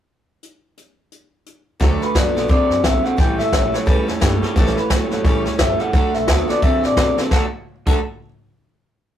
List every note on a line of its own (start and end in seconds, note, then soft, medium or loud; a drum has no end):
0.43 closed hi-hat medium
0.77 closed hi-hat medium
1.12 closed hi-hat medium
1.46 closed hi-hat medium
1.80 1.96 D2 loud
1.80 2.01 D3 loud
1.80 2.13 D3 medium
1.80 2.02 F#3 loud
1.80 2.02 A3 loud
1.80 2.13 A3 medium
1.80 2.01 F#4 loud
1.80 2.00 A4 loud
1.80 kick loud
1.80 snare soft
2.01 2.14 A3 soft
2.01 2.15 F#4 soft
2.01 2.15 A4 medium
2.01 2.16 B4 medium
2.01 muted upright bass stroke medium
2.01 snare soft
2.14 2.30 F#2 medium
2.14 2.34 D3 medium
2.14 2.36 F#3 medium
2.14 2.36 A3 medium
2.14 2.34 B3 medium
2.14 2.35 F#4 medium
2.14 2.34 A4 medium
2.14 2.49 D5 medium
2.14 kick medium
2.14 snare loud
2.14 hi-hat pedal medium
2.35 2.45 B1 medium
2.35 2.49 D3 medium
2.35 2.48 A3 soft
2.35 2.49 B3 medium
2.35 2.48 F#4 medium
2.35 2.49 A4 medium
2.35 snare soft
2.48 2.64 D2 loud
2.48 2.70 D3 medium
2.48 2.81 D3 medium
2.48 2.70 F#3 medium
2.48 2.70 A3 medium
2.48 2.82 C4 medium
2.48 2.71 F#4 loud
2.48 2.69 A4 medium
2.48 2.84 D5 medium
2.48 kick loud
2.48 snare soft
2.69 2.79 F#2 medium
2.69 2.83 A3 soft
2.69 2.84 F#4 soft
2.69 2.84 A4 soft
2.69 snare soft
2.83 2.99 B1 medium
2.83 3.03 D3 medium
2.83 3.04 F#3 medium
2.83 3.05 A3 medium
2.83 3.03 C4 medium
2.83 3.04 F#4 medium
2.83 3.03 A4 medium
2.83 3.04 E5 loud
2.83 kick medium
2.83 snare loud
2.83 hi-hat pedal medium
3.04 3.17 D3 medium
3.04 3.17 A3 soft
3.04 3.18 C4 medium
3.04 3.18 F#4 soft
3.04 3.18 A4 soft
3.04 3.18 F#5 medium
3.04 snare soft
3.17 3.33 A1 loud
3.17 3.39 A2 medium
3.17 3.51 A2 medium
3.17 3.39 E3 medium
3.17 3.51 E3 loud
3.17 3.39 G3 medium
3.17 3.39 A3 medium
3.17 3.38 C#4 medium
3.17 3.37 A4 medium
3.17 3.38 G5 loud
3.17 kick loud
3.17 snare soft
3.38 3.48 G1 loud
3.38 3.50 G3 soft
3.38 3.51 A3 soft
3.38 3.52 C#4 soft
3.38 3.52 A4 medium
3.38 3.75 E5 loud
3.38 snare soft
3.52 3.68 A1 medium
3.52 3.72 A2 medium
3.52 3.72 F#3 medium
3.52 3.73 A3 medium
3.52 3.72 C#4 medium
3.52 3.71 A4 medium
3.52 kick medium
3.52 snare loud
3.52 hi-hat pedal medium
3.72 3.86 A2 medium
3.72 3.87 F#3 medium
3.72 3.86 G3 soft
3.72 3.86 A3 medium
3.72 3.86 C#4 soft
3.72 3.86 A4 medium
3.72 3.87 C#5 medium
3.72 muted upright bass stroke medium
3.72 snare soft
3.86 4.02 C#2 loud
3.86 4.07 A2 medium
3.86 4.20 A2 medium
3.86 4.08 E3 medium
3.86 4.08 G3 medium
3.86 4.20 G3 loud
3.86 4.07 A3 medium
3.86 4.07 C#4 medium
3.86 4.05 A4 loud
3.86 4.08 B4 medium
3.86 kick loud
3.86 snare soft
4.07 4.17 E2 medium
4.07 4.19 G3 soft
4.07 4.20 A3 soft
4.07 4.21 C#4 medium
4.07 4.21 A4 medium
4.07 4.42 A4 medium
4.07 snare soft
4.20 4.37 G2 medium
4.20 4.41 A2 medium
4.20 4.42 G3 medium
4.20 4.41 G3 medium
4.20 4.42 A3 medium
4.20 4.42 C#4 medium
4.20 4.41 A4 medium
4.20 kick medium
4.20 snare loud
4.20 hi-hat pedal medium
4.41 4.55 A2 medium
4.41 4.55 G3 medium
4.41 4.56 G3 medium
4.41 4.56 A3 medium
4.41 4.56 C#4 medium
4.41 4.56 A4 medium
4.41 muted upright bass stroke medium
4.41 snare soft
4.56 4.71 A1 medium
4.56 4.77 A2 loud
4.56 4.88 A2 medium
4.56 4.77 E3 loud
4.56 4.89 E3 loud
4.56 4.77 G3 medium
4.56 4.78 A3 loud
4.56 4.76 C#4 loud
4.56 4.76 A4 loud
4.56 kick loud
4.56 snare soft
4.67 snare soft
4.77 4.89 G3 soft
4.77 4.90 A3 soft
4.77 4.91 C#4 soft
4.77 4.90 A4 soft
4.77 4.89 B4 medium
4.77 snare soft
4.90 5.05 C#2 medium
4.90 5.09 A2 medium
4.90 5.10 F#3 medium
4.90 5.11 G3 medium
4.90 5.12 A3 medium
4.90 5.11 C#4 medium
4.90 5.09 A4 medium
4.90 5.23 C#5 loud
4.90 kick medium
4.90 snare loud
4.90 hi-hat pedal medium
5.11 5.21 G1 medium
5.11 5.24 A2 medium
5.11 5.24 F#3 medium
5.11 5.25 G3 soft
5.11 5.25 A3 soft
5.11 5.25 C#4 medium
5.11 5.25 A4 medium
5.11 snare soft
5.24 5.40 A1 loud
5.24 5.46 A2 medium
5.24 5.57 A2 medium
5.24 5.46 E3 medium
5.24 5.57 G3 medium
5.24 5.46 G3 medium
5.24 5.46 A3 medium
5.24 5.45 C#4 loud
5.24 5.44 A4 loud
5.24 5.60 C#5 loud
5.24 kick loud
5.24 snare soft
5.45 5.55 C#2 medium
5.45 5.57 G3 soft
5.45 5.58 A3 soft
5.45 5.59 C#4 soft
5.45 5.59 A4 medium
5.45 snare soft
5.58 5.74 G1 medium
5.58 5.78 A2 medium
5.58 5.80 G3 medium
5.58 5.79 G3 medium
5.58 5.80 A3 medium
5.58 5.79 C#4 medium
5.58 5.78 A4 medium
5.58 5.80 E5 loud
5.58 kick medium
5.58 snare loud
5.58 hi-hat pedal medium
5.79 5.92 A2 medium
5.79 5.93 G3 medium
5.79 5.94 G3 soft
5.79 5.94 A3 soft
5.79 5.94 C#4 soft
5.79 5.93 A4 medium
5.79 5.93 F#5 medium
5.79 muted upright bass stroke medium
5.79 snare soft
5.93 6.08 D2 loud
5.93 6.25 D3 medium
5.93 6.14 D3 medium
5.93 6.15 F#3 medium
5.93 6.26 A3 loud
5.93 6.15 A3 medium
5.93 6.14 F#4 medium
5.93 6.13 A4 medium
5.93 6.14 F#5 loud
5.93 kick loud
5.93 snare soft
6.14 6.24 B1 loud
6.14 6.27 A3 soft
6.14 6.28 F#4 soft
6.14 6.28 A4 medium
6.14 6.49 E5 loud
6.14 snare soft
6.28 6.43 D2 medium
6.28 6.47 D3 medium
6.28 6.49 F#3 medium
6.28 6.49 A3 medium
6.28 6.48 B3 medium
6.28 6.48 F#4 medium
6.28 6.46 A4 medium
6.28 kick medium
6.28 snare loud
6.28 hi-hat pedal medium
6.48 6.62 D3 medium
6.48 6.62 A3 soft
6.48 6.62 B3 medium
6.48 6.63 F#4 soft
6.48 6.62 A4 medium
6.48 6.63 D5 medium
6.48 muted upright bass stroke medium
6.48 snare soft
6.62 6.77 F#2 medium
6.62 6.83 D3 medium
6.62 6.95 D3 medium
6.62 6.83 F#3 medium
6.62 6.84 A3 medium
6.62 6.95 C4 loud
6.62 6.83 F#4 medium
6.62 6.82 A4 medium
6.62 6.84 E5 medium
6.62 kick loud
6.62 snare soft
6.83 6.93 A2 medium
6.83 6.97 A3 soft
6.83 6.98 F#4 soft
6.83 6.97 A4 soft
6.83 7.16 D5 medium
6.83 snare soft
6.97 7.12 B2 medium
6.97 7.16 D3 medium
6.97 7.18 F#3 medium
6.97 7.18 A3 medium
6.97 7.17 C4 medium
6.97 7.19 F#4 medium
6.97 7.17 A4 medium
6.97 kick medium
6.97 snare loud
6.97 hi-hat pedal medium
7.17 7.30 D3 medium
7.17 7.31 C4 medium
7.17 7.32 F#4 medium
7.17 7.32 A4 medium
7.17 muted upright bass stroke medium
7.17 snare medium
7.21 7.31 A3 soft
7.31 7.43 D2 medium
7.31 7.44 D3 medium
7.31 7.44 D3 loud
7.31 7.44 F#3 medium
7.31 7.44 A3 loud
7.31 7.44 A3 medium
7.31 7.45 D4 loud
7.31 7.45 F#4 loud
7.31 7.45 F#4 medium
7.31 7.43 A4 medium
7.31 7.45 A4 loud
7.31 kick loud
7.31 snare medium
7.86 7.99 D2 medium
7.86 7.97 D3 medium
7.86 7.98 D3 medium
7.86 7.98 F#3 medium
7.86 7.98 A3 medium
7.86 7.99 A3 medium
7.86 7.98 D4 loud
7.86 7.98 F#4 medium
7.86 7.99 F#4 loud
7.86 8.00 A4 medium
7.86 7.99 A4 loud
7.86 kick loud
7.86 crash medium